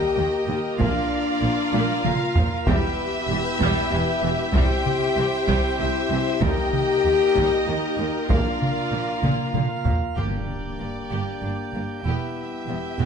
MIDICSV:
0, 0, Header, 1, 11, 480
1, 0, Start_track
1, 0, Key_signature, -2, "minor"
1, 0, Tempo, 625652
1, 613, Time_signature, 3, 2, 24, 8
1, 10014, End_track
2, 0, Start_track
2, 0, Title_t, "Violin section"
2, 0, Program_c, 0, 48
2, 0, Note_on_c, 0, 79, 66
2, 616, Note_on_c, 0, 74, 72
2, 617, Note_off_c, 0, 79, 0
2, 1556, Note_off_c, 0, 74, 0
2, 1573, Note_on_c, 0, 77, 69
2, 1814, Note_off_c, 0, 77, 0
2, 2058, Note_on_c, 0, 76, 88
2, 3465, Note_off_c, 0, 76, 0
2, 3487, Note_on_c, 0, 79, 89
2, 4431, Note_off_c, 0, 79, 0
2, 4454, Note_on_c, 0, 76, 75
2, 4923, Note_off_c, 0, 76, 0
2, 4932, Note_on_c, 0, 79, 83
2, 5891, Note_off_c, 0, 79, 0
2, 5897, Note_on_c, 0, 75, 66
2, 6374, Note_off_c, 0, 75, 0
2, 6390, Note_on_c, 0, 74, 56
2, 7340, Note_off_c, 0, 74, 0
2, 7805, Note_on_c, 0, 74, 34
2, 9217, Note_off_c, 0, 74, 0
2, 9259, Note_on_c, 0, 76, 44
2, 10014, Note_off_c, 0, 76, 0
2, 10014, End_track
3, 0, Start_track
3, 0, Title_t, "Violin section"
3, 0, Program_c, 1, 48
3, 0, Note_on_c, 1, 70, 57
3, 0, Note_on_c, 1, 75, 63
3, 615, Note_off_c, 1, 75, 0
3, 615, Note_on_c, 1, 77, 69
3, 2024, Note_off_c, 1, 70, 0
3, 2026, Note_off_c, 1, 77, 0
3, 2053, Note_on_c, 1, 76, 72
3, 2057, Note_on_c, 1, 71, 76
3, 3467, Note_off_c, 1, 71, 0
3, 3494, Note_on_c, 1, 72, 74
3, 4904, Note_off_c, 1, 72, 0
3, 4928, Note_on_c, 1, 75, 81
3, 4931, Note_on_c, 1, 70, 71
3, 4932, Note_off_c, 1, 76, 0
3, 6363, Note_on_c, 1, 77, 54
3, 6369, Note_off_c, 1, 75, 0
3, 7627, Note_off_c, 1, 77, 0
3, 7656, Note_off_c, 1, 70, 0
3, 7804, Note_on_c, 1, 67, 44
3, 8030, Note_off_c, 1, 67, 0
3, 8289, Note_on_c, 1, 58, 24
3, 8350, Note_off_c, 1, 58, 0
3, 8519, Note_on_c, 1, 67, 42
3, 8748, Note_off_c, 1, 67, 0
3, 8772, Note_on_c, 1, 62, 33
3, 8834, Note_off_c, 1, 62, 0
3, 9009, Note_on_c, 1, 58, 34
3, 9071, Note_off_c, 1, 58, 0
3, 9247, Note_on_c, 1, 67, 50
3, 9472, Note_off_c, 1, 67, 0
3, 9732, Note_on_c, 1, 59, 38
3, 9793, Note_off_c, 1, 59, 0
3, 9974, Note_on_c, 1, 67, 52
3, 10014, Note_off_c, 1, 67, 0
3, 10014, End_track
4, 0, Start_track
4, 0, Title_t, "Pipe organ"
4, 0, Program_c, 2, 19
4, 0, Note_on_c, 2, 58, 47
4, 0, Note_on_c, 2, 67, 39
4, 0, Note_on_c, 2, 70, 49
4, 0, Note_on_c, 2, 75, 54
4, 577, Note_off_c, 2, 67, 0
4, 601, Note_on_c, 2, 77, 55
4, 604, Note_on_c, 2, 65, 61
4, 612, Note_off_c, 2, 75, 0
4, 2046, Note_on_c, 2, 64, 63
4, 2047, Note_on_c, 2, 67, 63
4, 2048, Note_off_c, 2, 77, 0
4, 2049, Note_off_c, 2, 58, 0
4, 2049, Note_on_c, 2, 59, 64
4, 2050, Note_off_c, 2, 65, 0
4, 2053, Note_off_c, 2, 70, 0
4, 2053, Note_on_c, 2, 79, 63
4, 3487, Note_on_c, 2, 60, 67
4, 3491, Note_off_c, 2, 59, 0
4, 4929, Note_off_c, 2, 60, 0
4, 4929, Note_off_c, 2, 64, 0
4, 4929, Note_off_c, 2, 67, 0
4, 4929, Note_on_c, 2, 63, 62
4, 4930, Note_on_c, 2, 70, 65
4, 4933, Note_on_c, 2, 58, 62
4, 6368, Note_on_c, 2, 65, 43
4, 6368, Note_on_c, 2, 77, 47
4, 6369, Note_off_c, 2, 63, 0
4, 6371, Note_off_c, 2, 79, 0
4, 7780, Note_off_c, 2, 58, 0
4, 7794, Note_on_c, 2, 62, 31
4, 7796, Note_on_c, 2, 58, 32
4, 7797, Note_on_c, 2, 67, 30
4, 7799, Note_on_c, 2, 79, 31
4, 7809, Note_off_c, 2, 65, 0
4, 7809, Note_off_c, 2, 70, 0
4, 7809, Note_off_c, 2, 77, 0
4, 9212, Note_off_c, 2, 62, 0
4, 9213, Note_off_c, 2, 58, 0
4, 9242, Note_on_c, 2, 59, 43
4, 9243, Note_on_c, 2, 64, 43
4, 10014, Note_off_c, 2, 59, 0
4, 10014, Note_off_c, 2, 64, 0
4, 10014, Note_off_c, 2, 67, 0
4, 10014, Note_off_c, 2, 79, 0
4, 10014, End_track
5, 0, Start_track
5, 0, Title_t, "French horn section"
5, 0, Program_c, 3, 60
5, 0, Note_on_c, 3, 67, 96
5, 584, Note_off_c, 3, 67, 0
5, 620, Note_on_c, 3, 62, 89
5, 1558, Note_off_c, 3, 62, 0
5, 1572, Note_on_c, 3, 65, 86
5, 1808, Note_off_c, 3, 65, 0
5, 2071, Note_on_c, 3, 64, 104
5, 3472, Note_off_c, 3, 64, 0
5, 3501, Note_on_c, 3, 67, 114
5, 4438, Note_off_c, 3, 67, 0
5, 4455, Note_on_c, 3, 64, 89
5, 4924, Note_off_c, 3, 64, 0
5, 4929, Note_on_c, 3, 67, 117
5, 5890, Note_off_c, 3, 67, 0
5, 5895, Note_on_c, 3, 63, 80
5, 6373, Note_off_c, 3, 63, 0
5, 6374, Note_on_c, 3, 62, 70
5, 7313, Note_off_c, 3, 62, 0
5, 7801, Note_on_c, 3, 62, 36
5, 7806, Note_on_c, 3, 58, 37
5, 9215, Note_off_c, 3, 62, 0
5, 9218, Note_off_c, 3, 58, 0
5, 9250, Note_on_c, 3, 64, 47
5, 9254, Note_on_c, 3, 55, 43
5, 10014, Note_off_c, 3, 55, 0
5, 10014, Note_off_c, 3, 64, 0
5, 10014, End_track
6, 0, Start_track
6, 0, Title_t, "Viola section"
6, 0, Program_c, 4, 48
6, 0, Note_on_c, 4, 55, 71
6, 0, Note_on_c, 4, 67, 57
6, 120, Note_off_c, 4, 55, 0
6, 151, Note_on_c, 4, 51, 48
6, 212, Note_off_c, 4, 51, 0
6, 393, Note_on_c, 4, 51, 54
6, 454, Note_off_c, 4, 51, 0
6, 582, Note_off_c, 4, 67, 0
6, 621, Note_on_c, 4, 58, 69
6, 622, Note_on_c, 4, 65, 66
6, 841, Note_off_c, 4, 58, 0
6, 1106, Note_on_c, 4, 53, 51
6, 1167, Note_off_c, 4, 53, 0
6, 1351, Note_on_c, 4, 58, 80
6, 1566, Note_off_c, 4, 58, 0
6, 1578, Note_on_c, 4, 50, 54
6, 1640, Note_off_c, 4, 50, 0
6, 1823, Note_on_c, 4, 53, 55
6, 1885, Note_off_c, 4, 53, 0
6, 2057, Note_on_c, 4, 67, 74
6, 2058, Note_off_c, 4, 65, 0
6, 2058, Note_on_c, 4, 55, 78
6, 2280, Note_off_c, 4, 55, 0
6, 2537, Note_on_c, 4, 52, 58
6, 2598, Note_off_c, 4, 52, 0
6, 2787, Note_on_c, 4, 55, 90
6, 3004, Note_off_c, 4, 55, 0
6, 3020, Note_on_c, 4, 52, 60
6, 3081, Note_off_c, 4, 52, 0
6, 3255, Note_on_c, 4, 52, 58
6, 3317, Note_off_c, 4, 52, 0
6, 3493, Note_on_c, 4, 55, 79
6, 3716, Note_off_c, 4, 55, 0
6, 3972, Note_on_c, 4, 52, 62
6, 4033, Note_off_c, 4, 52, 0
6, 4200, Note_on_c, 4, 55, 79
6, 4430, Note_off_c, 4, 55, 0
6, 4444, Note_on_c, 4, 48, 51
6, 4505, Note_off_c, 4, 48, 0
6, 4688, Note_on_c, 4, 52, 59
6, 4750, Note_off_c, 4, 52, 0
6, 4904, Note_off_c, 4, 67, 0
6, 4923, Note_on_c, 4, 67, 71
6, 4924, Note_on_c, 4, 55, 67
6, 5151, Note_off_c, 4, 55, 0
6, 5407, Note_on_c, 4, 51, 50
6, 5468, Note_off_c, 4, 51, 0
6, 5647, Note_on_c, 4, 55, 67
6, 5872, Note_off_c, 4, 55, 0
6, 5900, Note_on_c, 4, 51, 44
6, 5961, Note_off_c, 4, 51, 0
6, 6136, Note_on_c, 4, 51, 48
6, 6198, Note_off_c, 4, 51, 0
6, 6338, Note_off_c, 4, 67, 0
6, 6371, Note_on_c, 4, 65, 58
6, 6374, Note_on_c, 4, 58, 58
6, 6596, Note_off_c, 4, 58, 0
6, 6847, Note_on_c, 4, 53, 45
6, 6908, Note_off_c, 4, 53, 0
6, 7088, Note_on_c, 4, 58, 62
6, 7312, Note_off_c, 4, 58, 0
6, 7326, Note_on_c, 4, 50, 38
6, 7388, Note_off_c, 4, 50, 0
6, 7567, Note_on_c, 4, 53, 37
6, 7628, Note_off_c, 4, 53, 0
6, 7657, Note_off_c, 4, 65, 0
6, 7809, Note_on_c, 4, 58, 37
6, 8033, Note_off_c, 4, 58, 0
6, 8296, Note_on_c, 4, 58, 34
6, 8358, Note_off_c, 4, 58, 0
6, 8532, Note_on_c, 4, 58, 37
6, 8755, Note_off_c, 4, 58, 0
6, 8778, Note_on_c, 4, 58, 34
6, 8840, Note_off_c, 4, 58, 0
6, 9019, Note_on_c, 4, 58, 34
6, 9080, Note_off_c, 4, 58, 0
6, 9260, Note_on_c, 4, 59, 46
6, 9479, Note_off_c, 4, 59, 0
6, 9736, Note_on_c, 4, 59, 45
6, 9798, Note_off_c, 4, 59, 0
6, 9968, Note_on_c, 4, 59, 59
6, 10014, Note_off_c, 4, 59, 0
6, 10014, End_track
7, 0, Start_track
7, 0, Title_t, "Timpani"
7, 0, Program_c, 5, 47
7, 7799, Note_on_c, 5, 43, 39
7, 8494, Note_off_c, 5, 43, 0
7, 10014, End_track
8, 0, Start_track
8, 0, Title_t, "Cello section"
8, 0, Program_c, 6, 48
8, 131, Note_on_c, 6, 39, 50
8, 193, Note_off_c, 6, 39, 0
8, 358, Note_on_c, 6, 39, 46
8, 419, Note_off_c, 6, 39, 0
8, 604, Note_on_c, 6, 46, 65
8, 665, Note_off_c, 6, 46, 0
8, 1088, Note_on_c, 6, 46, 48
8, 1150, Note_off_c, 6, 46, 0
8, 1330, Note_on_c, 6, 46, 65
8, 1391, Note_off_c, 6, 46, 0
8, 1576, Note_on_c, 6, 46, 52
8, 1637, Note_off_c, 6, 46, 0
8, 1815, Note_on_c, 6, 46, 50
8, 1876, Note_off_c, 6, 46, 0
8, 2053, Note_on_c, 6, 40, 81
8, 2114, Note_off_c, 6, 40, 0
8, 2532, Note_on_c, 6, 40, 53
8, 2594, Note_off_c, 6, 40, 0
8, 2762, Note_on_c, 6, 40, 78
8, 2823, Note_off_c, 6, 40, 0
8, 3002, Note_on_c, 6, 40, 62
8, 3063, Note_off_c, 6, 40, 0
8, 3242, Note_on_c, 6, 40, 53
8, 3303, Note_off_c, 6, 40, 0
8, 3480, Note_on_c, 6, 36, 81
8, 3541, Note_off_c, 6, 36, 0
8, 3961, Note_on_c, 6, 36, 52
8, 4022, Note_off_c, 6, 36, 0
8, 4200, Note_on_c, 6, 36, 74
8, 4261, Note_off_c, 6, 36, 0
8, 4442, Note_on_c, 6, 36, 58
8, 4503, Note_off_c, 6, 36, 0
8, 4678, Note_on_c, 6, 36, 54
8, 4740, Note_off_c, 6, 36, 0
8, 4924, Note_on_c, 6, 39, 74
8, 4985, Note_off_c, 6, 39, 0
8, 5407, Note_on_c, 6, 39, 44
8, 5468, Note_off_c, 6, 39, 0
8, 5648, Note_on_c, 6, 39, 66
8, 5709, Note_off_c, 6, 39, 0
8, 5891, Note_on_c, 6, 39, 52
8, 5952, Note_off_c, 6, 39, 0
8, 6129, Note_on_c, 6, 39, 42
8, 6190, Note_off_c, 6, 39, 0
8, 6364, Note_on_c, 6, 46, 63
8, 6425, Note_off_c, 6, 46, 0
8, 6843, Note_on_c, 6, 46, 42
8, 6905, Note_off_c, 6, 46, 0
8, 7081, Note_on_c, 6, 46, 57
8, 7142, Note_off_c, 6, 46, 0
8, 7329, Note_on_c, 6, 46, 42
8, 7391, Note_off_c, 6, 46, 0
8, 7559, Note_on_c, 6, 46, 44
8, 7620, Note_off_c, 6, 46, 0
8, 7796, Note_on_c, 6, 43, 37
8, 7858, Note_off_c, 6, 43, 0
8, 8281, Note_on_c, 6, 43, 26
8, 8343, Note_off_c, 6, 43, 0
8, 8528, Note_on_c, 6, 43, 35
8, 8589, Note_off_c, 6, 43, 0
8, 8765, Note_on_c, 6, 43, 32
8, 8826, Note_off_c, 6, 43, 0
8, 9013, Note_on_c, 6, 43, 32
8, 9074, Note_off_c, 6, 43, 0
8, 9247, Note_on_c, 6, 40, 45
8, 9309, Note_off_c, 6, 40, 0
8, 9727, Note_on_c, 6, 40, 36
8, 9789, Note_off_c, 6, 40, 0
8, 9964, Note_on_c, 6, 40, 52
8, 10014, Note_off_c, 6, 40, 0
8, 10014, End_track
9, 0, Start_track
9, 0, Title_t, "Double bass section"
9, 0, Program_c, 7, 48
9, 126, Note_on_c, 7, 39, 47
9, 188, Note_off_c, 7, 39, 0
9, 372, Note_on_c, 7, 39, 49
9, 433, Note_off_c, 7, 39, 0
9, 605, Note_on_c, 7, 34, 71
9, 666, Note_off_c, 7, 34, 0
9, 1092, Note_on_c, 7, 34, 49
9, 1154, Note_off_c, 7, 34, 0
9, 1330, Note_on_c, 7, 34, 74
9, 1392, Note_off_c, 7, 34, 0
9, 1569, Note_on_c, 7, 34, 55
9, 1631, Note_off_c, 7, 34, 0
9, 1815, Note_on_c, 7, 34, 54
9, 1876, Note_off_c, 7, 34, 0
9, 2052, Note_on_c, 7, 28, 75
9, 2113, Note_off_c, 7, 28, 0
9, 2528, Note_on_c, 7, 28, 61
9, 2589, Note_off_c, 7, 28, 0
9, 2770, Note_on_c, 7, 28, 74
9, 2832, Note_off_c, 7, 28, 0
9, 3018, Note_on_c, 7, 28, 54
9, 3079, Note_off_c, 7, 28, 0
9, 3249, Note_on_c, 7, 28, 62
9, 3311, Note_off_c, 7, 28, 0
9, 3486, Note_on_c, 7, 36, 81
9, 3547, Note_off_c, 7, 36, 0
9, 3965, Note_on_c, 7, 36, 61
9, 4026, Note_off_c, 7, 36, 0
9, 4205, Note_on_c, 7, 36, 69
9, 4266, Note_off_c, 7, 36, 0
9, 4450, Note_on_c, 7, 36, 55
9, 4511, Note_off_c, 7, 36, 0
9, 4687, Note_on_c, 7, 36, 53
9, 4748, Note_off_c, 7, 36, 0
9, 4925, Note_on_c, 7, 39, 83
9, 4986, Note_off_c, 7, 39, 0
9, 5406, Note_on_c, 7, 39, 45
9, 5467, Note_off_c, 7, 39, 0
9, 5644, Note_on_c, 7, 39, 57
9, 5705, Note_off_c, 7, 39, 0
9, 5878, Note_on_c, 7, 39, 45
9, 5939, Note_off_c, 7, 39, 0
9, 6122, Note_on_c, 7, 39, 45
9, 6183, Note_off_c, 7, 39, 0
9, 6364, Note_on_c, 7, 34, 62
9, 6426, Note_off_c, 7, 34, 0
9, 6840, Note_on_c, 7, 34, 40
9, 6902, Note_off_c, 7, 34, 0
9, 7081, Note_on_c, 7, 34, 58
9, 7142, Note_off_c, 7, 34, 0
9, 7320, Note_on_c, 7, 34, 41
9, 7381, Note_off_c, 7, 34, 0
9, 7562, Note_on_c, 7, 34, 42
9, 7623, Note_off_c, 7, 34, 0
9, 7804, Note_on_c, 7, 31, 39
9, 7865, Note_off_c, 7, 31, 0
9, 8284, Note_on_c, 7, 31, 29
9, 8345, Note_off_c, 7, 31, 0
9, 8526, Note_on_c, 7, 31, 43
9, 8588, Note_off_c, 7, 31, 0
9, 8762, Note_on_c, 7, 31, 30
9, 8823, Note_off_c, 7, 31, 0
9, 9001, Note_on_c, 7, 31, 34
9, 9063, Note_off_c, 7, 31, 0
9, 9238, Note_on_c, 7, 28, 50
9, 9299, Note_off_c, 7, 28, 0
9, 9719, Note_on_c, 7, 28, 37
9, 9780, Note_off_c, 7, 28, 0
9, 9969, Note_on_c, 7, 28, 61
9, 10014, Note_off_c, 7, 28, 0
9, 10014, End_track
10, 0, Start_track
10, 0, Title_t, "Impact"
10, 0, Program_c, 8, 103
10, 7810, Note_on_c, 8, 60, 38
10, 9250, Note_off_c, 8, 60, 0
10, 10014, End_track
11, 0, Start_track
11, 0, Title_t, "Taiko and cinematic ensemble drums"
11, 611, Note_on_c, 9, 41, 86
11, 688, Note_off_c, 9, 41, 0
11, 1336, Note_on_c, 9, 48, 60
11, 1412, Note_off_c, 9, 48, 0
11, 1574, Note_on_c, 9, 47, 80
11, 1651, Note_off_c, 9, 47, 0
11, 1808, Note_on_c, 9, 43, 88
11, 1884, Note_off_c, 9, 43, 0
11, 2048, Note_on_c, 9, 41, 93
11, 2124, Note_off_c, 9, 41, 0
11, 2768, Note_on_c, 9, 41, 63
11, 2845, Note_off_c, 9, 41, 0
11, 3489, Note_on_c, 9, 41, 81
11, 3566, Note_off_c, 9, 41, 0
11, 3728, Note_on_c, 9, 47, 49
11, 3804, Note_off_c, 9, 47, 0
11, 4207, Note_on_c, 9, 41, 72
11, 4284, Note_off_c, 9, 41, 0
11, 4925, Note_on_c, 9, 41, 87
11, 5002, Note_off_c, 9, 41, 0
11, 5164, Note_on_c, 9, 47, 48
11, 5240, Note_off_c, 9, 47, 0
11, 5644, Note_on_c, 9, 41, 65
11, 5720, Note_off_c, 9, 41, 0
11, 6367, Note_on_c, 9, 41, 93
11, 6444, Note_off_c, 9, 41, 0
11, 6612, Note_on_c, 9, 47, 47
11, 6688, Note_off_c, 9, 47, 0
11, 7084, Note_on_c, 9, 47, 59
11, 7161, Note_off_c, 9, 47, 0
11, 7322, Note_on_c, 9, 47, 69
11, 7398, Note_off_c, 9, 47, 0
11, 7559, Note_on_c, 9, 43, 81
11, 7635, Note_off_c, 9, 43, 0
11, 7798, Note_on_c, 9, 41, 34
11, 7875, Note_off_c, 9, 41, 0
11, 10014, End_track
0, 0, End_of_file